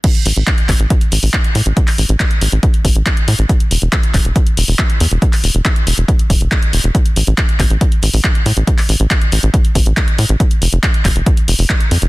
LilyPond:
<<
  \new Staff \with { instrumentName = "Analog synth bass" } { \clef bass \time 4/4 \key f \lydian \tempo 4 = 139 r8 a,,16 a,,16 r8 a,,16 a,,16 r8 a,,16 a,,16 r8 a,16 a,,16 | r8 a,,16 a,,16 r8 a,,16 a,,16 r8 a,,16 a,,16 r8 a,16 a,,16 | r8 e,,16 e,,16 r8 e,,16 e,,16 r8 e,,16 e,,16 r8 e,16 e,,16 | r8 e,,16 e,,16 r8 e,,16 e,,16 r8 e,,16 e,,16 r8 e,,16 e,,16 |
r8 a,,16 a,,16 r8 a,,16 a,,16 r8 a,,16 a,,16 r8 a,16 a,,16 | r8 a,,16 a,,16 r8 a,,16 a,,16 r8 a,,16 a,,16 r8 a,16 a,,16 | r8 f,,16 f,,16 r8 f,,16 f,,16 r8 f,,16 f,,16 r8 f,16 f,,16 | }
  \new DrumStaff \with { instrumentName = "Drums" } \drummode { \time 4/4 <cymc hh bd>16 hh16 hho16 hh16 <hc hh bd>16 hh16 <hc hho bd>16 hh16 <hh bd>16 hh16 hho16 hho16 <hc hh bd>16 hh16 hho16 hh16 | <hh bd>16 <hc hho>16 hho16 hh16 <hc hh bd>16 hh16 hho16 hh16 <hh bd>16 hh16 <hho bd>16 hh16 <hc hh bd>16 hh16 hho16 hh16 | <hh bd>16 hh16 hho16 hh16 <hc hh bd>16 hh16 <hc hho bd>16 hh16 <hh bd>16 hh16 hho16 hho16 <hc bd>16 hh16 hho16 hh16 | <hh bd>16 <hc hho>16 hho16 hh16 <hc hh bd>16 hh16 hho16 hh16 <hh bd>16 hh16 <hho bd>16 hh16 <hc hh bd>16 hh16 hho16 hh16 |
<hh bd>16 hh16 hho16 hh16 <hc hh bd>16 hh16 <hc hho bd>16 hh16 <hh bd>16 hh16 hho16 hho16 <hc bd>16 hh16 hho16 hh16 | <hh bd>16 <hc hho>16 hho16 hh16 <hc hh bd>16 hh16 hho16 hh16 <hh bd>16 hh16 <hho bd>16 hh16 <hc hh bd>16 hh16 hho16 hh16 | <hh bd>16 hh16 hho16 hh16 <hc hh bd>16 hh16 <hc hho bd>16 hh16 <hh bd>16 hh16 hho16 hho16 <hc hh bd>16 hh16 hho16 hh16 | }
>>